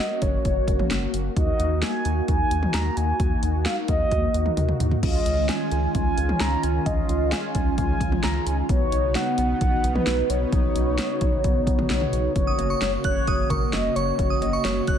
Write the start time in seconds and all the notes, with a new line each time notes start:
Already playing: A#3 C#4 F#4
0.00 D#5
0.22 F#1 C#5, kick, closed hi-hat
0.45 F#1, kick, closed hi-hat
0.68 F#1, kick, closed hi-hat
0.79 mid tom
0.91 F#1, snare, closed hi-hat
1.14 F#1, closed hi-hat
1.36 D#2 A#3 D#4 F#4 D#5, kick, closed hi-hat
1.59 D#2, closed hi-hat
1.82 G#5, snare, closed hi-hat
2.05 D#2, closed hi-hat
2.28 D#2 G#5, kick, closed hi-hat
2.51 D#2, closed hi-hat
2.63 mid tom
2.74 D#2 A#5, snare, closed hi-hat
2.97 D#2 G#5, closed hi-hat
3.20 D#2, kick, closed hi-hat
3.43 D#2, closed hi-hat
3.66 F5, snare, closed hi-hat
3.88 D#2 D#5, kick, closed hi-hat
4.11 D#2, kick, closed hi-hat, high tom
4.34 D#2, closed hi-hat
4.46 mid tom
4.57 D#2, closed hi-hat, mid tom
4.69 mid tom
4.80 D#2, closed hi-hat, floor tom
4.91 floor tom
5.03 C#2 D#3 G#3 C#4 F4 D#5, kick, crash
5.26 C#2, closed hi-hat
5.49 G#5, snare, closed hi-hat
5.71 C#2, closed hi-hat
5.95 C#2 G#5, kick, closed hi-hat
6.18 C#2, closed hi-hat
6.29 mid tom
6.40 C#2 A#5, snare, closed hi-hat
6.63 C#2 G#5, closed hi-hat
6.86 C#2 D#5, kick, closed hi-hat
7.09 C#2, closed hi-hat
7.32 G#5, snare, closed hi-hat
7.55 C#2, kick, closed hi-hat
7.78 C#2 G#5, kick, closed hi-hat
8.00 C#2, kick, closed hi-hat
8.12 mid tom
8.23 C#2 A#5, snare, closed hi-hat
8.46 C#2 G#5, closed hi-hat
8.69 B1 C#3 B3 D#4 F#4 C#5, kick, closed hi-hat
8.92 B1, closed hi-hat
9.15 F#5, snare, closed hi-hat
9.38 B1, closed hi-hat
9.61 B1 F#5, kick, closed hi-hat
9.84 B1, closed hi-hat
9.95 B4, mid tom
10.07 B1, snare, closed hi-hat
10.30 B1 C#5, closed hi-hat
10.52 B1, kick, closed hi-hat
10.75 B1, closed hi-hat
10.98 snare, closed hi-hat
11.21 B1, kick, closed hi-hat
11.44 B1, kick, closed hi-hat
11.67 B1, kick, closed hi-hat
11.79 mid tom
11.90 B1 C#5, snare, closed hi-hat
12.01 mid tom
12.13 B1, closed hi-hat
12.36 F#1 C#3 A#3 C#4 F#4 C#5, kick, closed hi-hat
12.47 D#6
12.59 F#1, closed hi-hat, cowbell
12.70 C#6
12.81 F#1 C#5, snare, closed hi-hat
13.04 F#1 C#5 F#6, kick, closed hi-hat
13.27 F#1 D#6, kick, closed hi-hat
13.50 G#1 A#4 C#6, kick, closed hi-hat, mid tom
13.73 F#1 D#5, snare, closed hi-hat
13.96 F#1 C#5 C#6, closed hi-hat
14.19 F#1, kick, closed hi-hat
14.30 D#6
14.41 F#1 D#5, closed hi-hat, cowbell
14.53 C#6
14.64 F#1 C#5, snare, closed hi-hat
14.87 F#1 F#6, kick, closed hi-hat